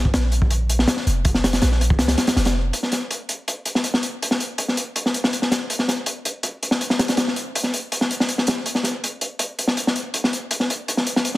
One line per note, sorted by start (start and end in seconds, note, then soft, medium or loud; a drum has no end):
0.00 0.13 A#1 loud
0.05 kick medium
0.14 0.87 A#1 loud
0.14 snare loud
0.14 closed hi-hat medium
0.32 closed hi-hat medium
0.42 kick medium
0.51 closed hi-hat medium
0.69 closed hi-hat medium
0.79 snare medium
0.88 snare loud
0.88 closed hi-hat medium
0.97 snare medium
1.07 1.61 F1 medium
1.07 closed hi-hat medium
1.25 kick loud
1.25 closed hi-hat medium
1.34 snare medium
1.44 snare loud
1.44 closed hi-hat medium
1.53 snare medium
1.53 closed hi-hat medium
1.62 2.01 A#1 loud
1.62 snare loud
1.62 closed hi-hat medium
1.72 snare soft
1.81 closed hi-hat medium
1.90 kick loud
1.99 2.16 C#2 medium
1.99 snare loud
1.99 closed hi-hat medium
2.08 snare loud
2.08 closed hi-hat medium
2.18 snare loud
2.18 closed hi-hat medium
2.27 snare loud
2.27 closed hi-hat medium
2.36 2.72 F1 loud
2.36 snare loud
2.36 closed hi-hat medium
2.45 snare loud
2.45 closed hi-hat medium
2.73 closed hi-hat medium
2.83 snare soft
2.92 snare soft
2.92 closed hi-hat medium
3.11 closed hi-hat medium
3.29 closed hi-hat medium
3.48 closed hi-hat medium
3.65 closed hi-hat medium
3.75 snare soft
3.84 closed hi-hat medium
3.94 snare medium
4.03 closed hi-hat medium
4.22 closed hi-hat medium
4.31 snare soft
4.40 closed hi-hat medium
4.58 closed hi-hat medium
4.68 snare soft
4.77 closed hi-hat medium
4.96 closed hi-hat medium
5.06 snare soft
5.14 closed hi-hat medium
5.24 snare medium
5.33 closed hi-hat medium
5.42 snare soft
5.51 snare soft
5.51 closed hi-hat medium
5.70 closed hi-hat medium
5.79 snare soft
5.88 snare soft
5.88 closed hi-hat medium
6.06 closed hi-hat medium
6.25 closed hi-hat medium
6.43 closed hi-hat medium
6.63 closed hi-hat medium
6.71 snare soft
6.81 closed hi-hat medium
6.90 snare medium
6.99 snare medium
6.99 closed hi-hat medium
7.08 snare medium
7.08 closed hi-hat medium
7.17 snare loud
7.17 closed hi-hat medium
7.28 snare soft
7.36 closed hi-hat medium
7.55 closed hi-hat medium
7.63 snare soft
7.74 closed hi-hat medium
7.92 closed hi-hat medium
8.01 snare soft
8.11 closed hi-hat medium
8.20 snare soft
8.29 closed hi-hat medium
8.38 snare soft
8.47 snare medium
8.47 closed hi-hat medium
8.66 closed hi-hat medium
8.75 snare soft
8.83 snare soft
8.83 closed hi-hat medium
9.04 closed hi-hat medium
9.21 closed hi-hat medium
9.39 closed hi-hat medium
9.59 closed hi-hat medium
9.67 snare soft
9.77 closed hi-hat medium
9.87 snare medium
9.96 closed hi-hat medium
10.14 closed hi-hat medium
10.24 snare soft
10.33 closed hi-hat medium
10.51 closed hi-hat medium
10.60 snare soft
10.70 closed hi-hat medium
10.88 closed hi-hat medium
10.97 snare soft
11.07 closed hi-hat medium
11.16 snare medium
11.25 closed hi-hat medium